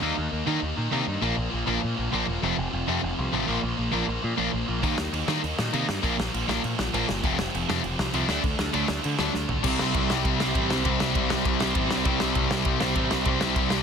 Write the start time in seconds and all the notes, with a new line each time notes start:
0.00 D#2 D#3 G3 A#3 D#4
0.16 D#2 D#3 A#3 D#4
0.31 D#2 D#3 A#3 D#4
0.45 D#3 G3 A#3 D#4
0.60 D#2 D#3 A#3 D#4
0.76 A#2 D#3 A#3 D#4
0.90 C3 D#3 G3 A#3 D#4
1.08 G2 D#3 A#3 D#4
1.22 A#1 A#2 F3 A#3 D4
1.36 A#1 A#2 F3 A#3
1.50 A#1 A#2 F3 A#3
1.66 A#1 A#2 F3 A#3 D4
1.81 A#2 F3 A#3
1.96 A#1 A#2 F3 A#3
2.11 A#1 A#2 F3 A#3 D4
2.26 E1 A#2 F3 A#3
2.41 F1 F2 C3 F3 A3 C4
2.57 F1 F2 C3 F3
2.71 F1 F2 C3 F3
2.88 F2 C3 F3 A3 C4
3.03 F1 F2 C3 F3
3.19 C2 F2 C3 F3
3.32 A1 F2 C3 F3 A3 C4
3.46 A#1 A#2 F3 A#3 D4
3.61 A#1 A#2 F3 A#3
3.77 A#1 A#2 F3 A#3
3.93 A#1 A#2 F3 A#3 D4
4.08 A#1 A#2 F3 A#3
4.23 A#2 F3 A#3
4.38 A#1 A#2 F3 A#3 D4
4.53 A#1 A#2 F3 A#3
4.67 A#1 A#2 F3 A#3
4.83 D#2 D#3 G3 A#3 D#4, kick, crash
4.98 D#2 D#3 A#3 D#4, snare
5.13 D#2 D#3 A#3 D#4, crash
5.28 D#3 G3 A#3 D#4, snare
5.44 D#2 D#3 A#3 D#4, crash
5.58 A#2 D#3 A#3 D#4, snare
5.73 C3 D#3 G3 A#3 D#4, crash
5.87 G2 D#3 A#3 D#4, snare
6.03 A#1 A#2 F3 A#3 D4, kick, crash
6.18 A#1 A#2 F3 A#3, snare
6.33 A#1 A#2 F3 A#3, crash
6.48 A#1 A#2 F3 A#3 D4, snare
6.64 A#2 F3 A#3, crash
6.78 A#1 A#2 F3 A#3, snare
6.94 A#1 A#2 F3 A#3 D4, crash
7.09 G1 A#2 F3 A#3, snare
7.24 F1 F2 C3 F3 A3 C4, kick, crash
7.39 F1 F2 C3 F3, snare
7.55 F1 F2 C3 F3, crash
7.69 F2 C3 F3 A3 C4, snare
7.84 F1 F2 C3 F3, crash
7.99 C2 F2 C3 F3, snare
8.13 C2 F2 C3 F3 A3 C4, crash
8.29 D2 D3 F#3 A3 D4, snare
8.43 D2 D3 A3 D4, kick, crash
8.57 D2 D3 A3 D4, snare
8.73 D2 D3 F#3 A3 D4, crash
8.87 D2 D3 A3 D4, snare
9.03 D3 A3 D4, crash
9.19 D2 D3 F#3 A3 D4, snare
9.34 D2 D3 A3 D4, snare
9.49 B1 D3 A3 D4, floor tom
9.63 C2 C3 G3 C4 E4, kick, crash
9.79 C2 C3 G3 C4, snare
9.94 C2 C3 G3 C4, kick, ride
10.09 C2 C3 G3 C4, snare
10.25 C2 C3 G3 C4, kick, ride
10.40 C2 C3 G3 C4, snare
10.55 A1 C3 G3 C4, kick, ride
10.70 C2 C3 G3 C4, snare
10.85 C2 C3 G3 C4 E4, kick, ride
11.00 C2 C3 G3 C4, snare
11.15 C2 C3 G3 C4, kick, ride
11.30 C2 C3 G3 C4, snare
11.45 C2 C3 G3 C4, kick, ride
11.60 C2 C3 G3 C4, snare
11.75 A1 C3 G3 C4, kick, ride
11.90 C2 C3 G3 C4, snare
12.05 C2 C3 G3 C4 E4, kick, ride
12.20 C2 C3 G3 C4, snare
12.35 C2 C3 G3 C4, kick, ride
12.50 C2 C3 G3 C4, snare
12.65 C2 C3 G3 C4, kick, ride
12.81 C2 C3 G3 C4, snare
12.95 A1 C3 G3 C4, kick, ride
13.10 C2 C3 G3 C4, snare
13.25 C2 C3 G3 C4 E4, kick, ride
13.39 C2 C3 G3 C4, snare
13.56 C2 C3 G3 C4, kick, ride
13.70 C2 C3 G3 C4, snare